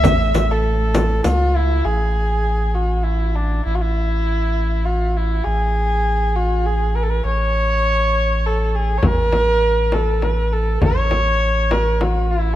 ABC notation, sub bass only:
X:1
M:3/4
L:1/8
Q:1/4=100
K:none
V:1 name="Sub bass" clef=bass
A,,,4 ^C,,2 | A,,,6 | A,,,6 | A,,,6 |
A,,,6 | A,,,6 | A,,,6 |]